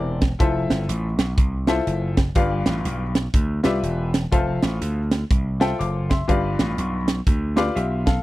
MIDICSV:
0, 0, Header, 1, 4, 480
1, 0, Start_track
1, 0, Tempo, 490838
1, 391, Time_signature, 4, 2, 24, 8
1, 8047, End_track
2, 0, Start_track
2, 0, Title_t, "Upright piano"
2, 0, Program_c, 0, 0
2, 0, Note_on_c, 0, 48, 67
2, 0, Note_on_c, 0, 64, 78
2, 0, Note_on_c, 0, 67, 72
2, 0, Note_on_c, 0, 70, 80
2, 0, Note_on_c, 0, 72, 84
2, 0, Note_on_c, 0, 74, 95
2, 167, Note_off_c, 0, 48, 0
2, 179, Note_off_c, 0, 64, 0
2, 179, Note_off_c, 0, 67, 0
2, 181, Note_off_c, 0, 70, 0
2, 181, Note_off_c, 0, 72, 0
2, 213, Note_off_c, 0, 74, 0
2, 381, Note_on_c, 0, 64, 88
2, 385, Note_on_c, 0, 65, 80
2, 391, Note_on_c, 0, 69, 76
2, 392, Note_on_c, 0, 72, 70
2, 397, Note_on_c, 0, 76, 95
2, 1030, Note_off_c, 0, 64, 0
2, 1032, Note_off_c, 0, 65, 0
2, 1035, Note_off_c, 0, 69, 0
2, 1036, Note_off_c, 0, 72, 0
2, 1039, Note_off_c, 0, 76, 0
2, 1635, Note_on_c, 0, 64, 81
2, 1639, Note_on_c, 0, 65, 81
2, 1642, Note_on_c, 0, 69, 75
2, 1646, Note_on_c, 0, 72, 78
2, 1648, Note_on_c, 0, 76, 88
2, 2096, Note_off_c, 0, 64, 0
2, 2099, Note_off_c, 0, 65, 0
2, 2100, Note_off_c, 0, 69, 0
2, 2102, Note_off_c, 0, 72, 0
2, 2103, Note_off_c, 0, 76, 0
2, 2302, Note_on_c, 0, 65, 84
2, 2305, Note_on_c, 0, 67, 75
2, 2306, Note_on_c, 0, 71, 73
2, 2307, Note_on_c, 0, 43, 77
2, 2310, Note_on_c, 0, 74, 71
2, 2313, Note_on_c, 0, 77, 95
2, 2951, Note_off_c, 0, 65, 0
2, 2953, Note_off_c, 0, 67, 0
2, 2953, Note_off_c, 0, 71, 0
2, 2955, Note_off_c, 0, 74, 0
2, 2956, Note_off_c, 0, 77, 0
2, 3047, Note_off_c, 0, 43, 0
2, 3554, Note_on_c, 0, 65, 89
2, 3558, Note_on_c, 0, 67, 72
2, 3560, Note_on_c, 0, 71, 72
2, 3563, Note_on_c, 0, 74, 74
2, 3569, Note_on_c, 0, 76, 92
2, 4016, Note_off_c, 0, 65, 0
2, 4018, Note_off_c, 0, 67, 0
2, 4019, Note_off_c, 0, 71, 0
2, 4020, Note_off_c, 0, 74, 0
2, 4023, Note_off_c, 0, 76, 0
2, 4221, Note_on_c, 0, 65, 80
2, 4225, Note_on_c, 0, 69, 76
2, 4228, Note_on_c, 0, 72, 76
2, 4229, Note_on_c, 0, 76, 72
2, 4233, Note_on_c, 0, 77, 92
2, 4871, Note_off_c, 0, 65, 0
2, 4873, Note_off_c, 0, 69, 0
2, 4874, Note_off_c, 0, 72, 0
2, 4875, Note_off_c, 0, 76, 0
2, 4876, Note_off_c, 0, 77, 0
2, 5477, Note_on_c, 0, 65, 90
2, 5482, Note_on_c, 0, 69, 77
2, 5483, Note_on_c, 0, 72, 72
2, 5485, Note_on_c, 0, 76, 76
2, 5490, Note_on_c, 0, 79, 91
2, 5664, Note_on_c, 0, 86, 70
2, 5669, Note_off_c, 0, 76, 0
2, 5669, Note_on_c, 0, 77, 61
2, 5672, Note_off_c, 0, 79, 0
2, 5937, Note_off_c, 0, 65, 0
2, 5940, Note_off_c, 0, 69, 0
2, 5940, Note_off_c, 0, 72, 0
2, 5950, Note_off_c, 0, 86, 0
2, 5952, Note_off_c, 0, 77, 0
2, 5961, Note_on_c, 0, 84, 71
2, 5968, Note_on_c, 0, 76, 64
2, 6138, Note_on_c, 0, 65, 82
2, 6139, Note_on_c, 0, 67, 78
2, 6142, Note_on_c, 0, 43, 72
2, 6145, Note_on_c, 0, 71, 78
2, 6146, Note_on_c, 0, 74, 75
2, 6149, Note_on_c, 0, 77, 99
2, 6421, Note_off_c, 0, 84, 0
2, 6424, Note_off_c, 0, 76, 0
2, 6789, Note_off_c, 0, 65, 0
2, 6790, Note_off_c, 0, 67, 0
2, 6792, Note_off_c, 0, 71, 0
2, 6793, Note_off_c, 0, 74, 0
2, 6794, Note_off_c, 0, 77, 0
2, 6884, Note_off_c, 0, 43, 0
2, 7396, Note_on_c, 0, 65, 84
2, 7396, Note_on_c, 0, 67, 75
2, 7400, Note_on_c, 0, 86, 70
2, 7401, Note_on_c, 0, 74, 77
2, 7402, Note_on_c, 0, 71, 77
2, 7406, Note_on_c, 0, 77, 94
2, 7569, Note_off_c, 0, 77, 0
2, 7574, Note_off_c, 0, 86, 0
2, 7575, Note_off_c, 0, 67, 0
2, 7583, Note_on_c, 0, 76, 66
2, 7584, Note_on_c, 0, 77, 73
2, 7588, Note_off_c, 0, 71, 0
2, 7588, Note_off_c, 0, 74, 0
2, 7589, Note_on_c, 0, 67, 61
2, 7857, Note_off_c, 0, 65, 0
2, 7868, Note_off_c, 0, 77, 0
2, 7869, Note_off_c, 0, 76, 0
2, 7872, Note_off_c, 0, 67, 0
2, 7883, Note_on_c, 0, 77, 74
2, 7887, Note_on_c, 0, 69, 59
2, 8047, Note_off_c, 0, 69, 0
2, 8047, Note_off_c, 0, 77, 0
2, 8047, End_track
3, 0, Start_track
3, 0, Title_t, "Slap bass"
3, 0, Program_c, 1, 36
3, 0, Note_on_c, 1, 28, 99
3, 320, Note_off_c, 1, 28, 0
3, 394, Note_on_c, 1, 29, 118
3, 645, Note_off_c, 1, 29, 0
3, 684, Note_on_c, 1, 31, 96
3, 841, Note_off_c, 1, 31, 0
3, 866, Note_on_c, 1, 33, 98
3, 1120, Note_off_c, 1, 33, 0
3, 1160, Note_on_c, 1, 35, 99
3, 1319, Note_off_c, 1, 35, 0
3, 1344, Note_on_c, 1, 36, 94
3, 1755, Note_off_c, 1, 36, 0
3, 1826, Note_on_c, 1, 30, 113
3, 2236, Note_off_c, 1, 30, 0
3, 2305, Note_on_c, 1, 31, 116
3, 2560, Note_off_c, 1, 31, 0
3, 2606, Note_on_c, 1, 33, 86
3, 2762, Note_off_c, 1, 33, 0
3, 2787, Note_on_c, 1, 35, 83
3, 3197, Note_off_c, 1, 35, 0
3, 3264, Note_on_c, 1, 38, 94
3, 3519, Note_off_c, 1, 38, 0
3, 3565, Note_on_c, 1, 36, 94
3, 3722, Note_off_c, 1, 36, 0
3, 3744, Note_on_c, 1, 28, 103
3, 4155, Note_off_c, 1, 28, 0
3, 4228, Note_on_c, 1, 29, 110
3, 4482, Note_off_c, 1, 29, 0
3, 4524, Note_on_c, 1, 33, 94
3, 4681, Note_off_c, 1, 33, 0
3, 4705, Note_on_c, 1, 38, 81
3, 5116, Note_off_c, 1, 38, 0
3, 5188, Note_on_c, 1, 36, 85
3, 5597, Note_off_c, 1, 36, 0
3, 5673, Note_on_c, 1, 30, 97
3, 6080, Note_off_c, 1, 30, 0
3, 6150, Note_on_c, 1, 31, 110
3, 6403, Note_off_c, 1, 31, 0
3, 6449, Note_on_c, 1, 33, 100
3, 6604, Note_off_c, 1, 33, 0
3, 6632, Note_on_c, 1, 35, 86
3, 7040, Note_off_c, 1, 35, 0
3, 7109, Note_on_c, 1, 38, 103
3, 7518, Note_off_c, 1, 38, 0
3, 7590, Note_on_c, 1, 35, 114
3, 7998, Note_off_c, 1, 35, 0
3, 8047, End_track
4, 0, Start_track
4, 0, Title_t, "Drums"
4, 211, Note_on_c, 9, 42, 76
4, 212, Note_on_c, 9, 38, 109
4, 214, Note_on_c, 9, 36, 96
4, 309, Note_off_c, 9, 42, 0
4, 310, Note_off_c, 9, 38, 0
4, 311, Note_off_c, 9, 36, 0
4, 392, Note_on_c, 9, 36, 115
4, 392, Note_on_c, 9, 42, 79
4, 490, Note_off_c, 9, 36, 0
4, 490, Note_off_c, 9, 42, 0
4, 688, Note_on_c, 9, 38, 109
4, 692, Note_on_c, 9, 42, 71
4, 786, Note_off_c, 9, 38, 0
4, 790, Note_off_c, 9, 42, 0
4, 873, Note_on_c, 9, 42, 118
4, 971, Note_off_c, 9, 42, 0
4, 1161, Note_on_c, 9, 38, 110
4, 1162, Note_on_c, 9, 42, 82
4, 1258, Note_off_c, 9, 38, 0
4, 1260, Note_off_c, 9, 42, 0
4, 1346, Note_on_c, 9, 36, 127
4, 1349, Note_on_c, 9, 42, 91
4, 1444, Note_off_c, 9, 36, 0
4, 1447, Note_off_c, 9, 42, 0
4, 1637, Note_on_c, 9, 38, 125
4, 1644, Note_on_c, 9, 42, 65
4, 1735, Note_off_c, 9, 38, 0
4, 1741, Note_off_c, 9, 42, 0
4, 1831, Note_on_c, 9, 42, 89
4, 1929, Note_off_c, 9, 42, 0
4, 2124, Note_on_c, 9, 42, 74
4, 2125, Note_on_c, 9, 38, 105
4, 2127, Note_on_c, 9, 36, 86
4, 2222, Note_off_c, 9, 42, 0
4, 2223, Note_off_c, 9, 38, 0
4, 2225, Note_off_c, 9, 36, 0
4, 2300, Note_on_c, 9, 42, 84
4, 2305, Note_on_c, 9, 36, 115
4, 2398, Note_off_c, 9, 42, 0
4, 2403, Note_off_c, 9, 36, 0
4, 2600, Note_on_c, 9, 38, 111
4, 2604, Note_on_c, 9, 42, 77
4, 2698, Note_off_c, 9, 38, 0
4, 2702, Note_off_c, 9, 42, 0
4, 2791, Note_on_c, 9, 42, 111
4, 2888, Note_off_c, 9, 42, 0
4, 3082, Note_on_c, 9, 38, 110
4, 3083, Note_on_c, 9, 42, 79
4, 3180, Note_off_c, 9, 38, 0
4, 3181, Note_off_c, 9, 42, 0
4, 3265, Note_on_c, 9, 36, 127
4, 3270, Note_on_c, 9, 42, 85
4, 3362, Note_off_c, 9, 36, 0
4, 3368, Note_off_c, 9, 42, 0
4, 3557, Note_on_c, 9, 38, 115
4, 3564, Note_on_c, 9, 42, 63
4, 3655, Note_off_c, 9, 38, 0
4, 3662, Note_off_c, 9, 42, 0
4, 3752, Note_on_c, 9, 42, 98
4, 3850, Note_off_c, 9, 42, 0
4, 4048, Note_on_c, 9, 42, 68
4, 4050, Note_on_c, 9, 38, 101
4, 4146, Note_off_c, 9, 42, 0
4, 4147, Note_off_c, 9, 38, 0
4, 4229, Note_on_c, 9, 36, 105
4, 4230, Note_on_c, 9, 42, 78
4, 4327, Note_off_c, 9, 36, 0
4, 4327, Note_off_c, 9, 42, 0
4, 4523, Note_on_c, 9, 38, 109
4, 4527, Note_on_c, 9, 42, 74
4, 4621, Note_off_c, 9, 38, 0
4, 4625, Note_off_c, 9, 42, 0
4, 4711, Note_on_c, 9, 42, 116
4, 4809, Note_off_c, 9, 42, 0
4, 5001, Note_on_c, 9, 38, 109
4, 5003, Note_on_c, 9, 42, 82
4, 5099, Note_off_c, 9, 38, 0
4, 5101, Note_off_c, 9, 42, 0
4, 5189, Note_on_c, 9, 36, 124
4, 5193, Note_on_c, 9, 42, 90
4, 5287, Note_off_c, 9, 36, 0
4, 5290, Note_off_c, 9, 42, 0
4, 5486, Note_on_c, 9, 38, 116
4, 5493, Note_on_c, 9, 42, 67
4, 5584, Note_off_c, 9, 38, 0
4, 5590, Note_off_c, 9, 42, 0
4, 5679, Note_on_c, 9, 42, 88
4, 5777, Note_off_c, 9, 42, 0
4, 5972, Note_on_c, 9, 42, 77
4, 5973, Note_on_c, 9, 36, 86
4, 5974, Note_on_c, 9, 38, 99
4, 6070, Note_off_c, 9, 42, 0
4, 6071, Note_off_c, 9, 36, 0
4, 6071, Note_off_c, 9, 38, 0
4, 6151, Note_on_c, 9, 36, 105
4, 6152, Note_on_c, 9, 42, 91
4, 6249, Note_off_c, 9, 36, 0
4, 6249, Note_off_c, 9, 42, 0
4, 6446, Note_on_c, 9, 38, 107
4, 6450, Note_on_c, 9, 42, 73
4, 6544, Note_off_c, 9, 38, 0
4, 6548, Note_off_c, 9, 42, 0
4, 6634, Note_on_c, 9, 42, 110
4, 6732, Note_off_c, 9, 42, 0
4, 6922, Note_on_c, 9, 38, 114
4, 6924, Note_on_c, 9, 42, 81
4, 7020, Note_off_c, 9, 38, 0
4, 7021, Note_off_c, 9, 42, 0
4, 7107, Note_on_c, 9, 36, 127
4, 7107, Note_on_c, 9, 42, 93
4, 7205, Note_off_c, 9, 36, 0
4, 7205, Note_off_c, 9, 42, 0
4, 7401, Note_on_c, 9, 38, 119
4, 7408, Note_on_c, 9, 42, 64
4, 7498, Note_off_c, 9, 38, 0
4, 7505, Note_off_c, 9, 42, 0
4, 7596, Note_on_c, 9, 42, 88
4, 7694, Note_off_c, 9, 42, 0
4, 7890, Note_on_c, 9, 42, 73
4, 7891, Note_on_c, 9, 36, 90
4, 7891, Note_on_c, 9, 38, 107
4, 7988, Note_off_c, 9, 42, 0
4, 7989, Note_off_c, 9, 36, 0
4, 7989, Note_off_c, 9, 38, 0
4, 8047, End_track
0, 0, End_of_file